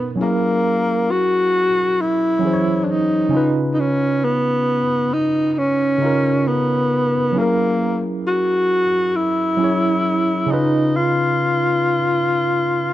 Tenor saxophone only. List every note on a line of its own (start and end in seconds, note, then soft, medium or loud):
0.00 0.17 B3 medium
0.22 1.13 A#3 loud
1.11 2.02 F#4 loud
2.01 2.86 E4 loud
2.84 2.92 D4 medium
2.91 3.57 D#4 loud
3.74 3.82 D#4 medium
3.80 4.26 C#4 loud
4.25 5.15 B3 loud
5.14 5.53 D#4 loud
5.53 5.60 D#4 medium
5.58 6.49 C#4 loud
6.48 7.40 B3 medium
7.38 8.04 A#3 loud
8.28 9.18 F#4 loud
9.16 10.53 E4 loud
10.52 10.98 D#4 medium
10.96 12.93 F4 loud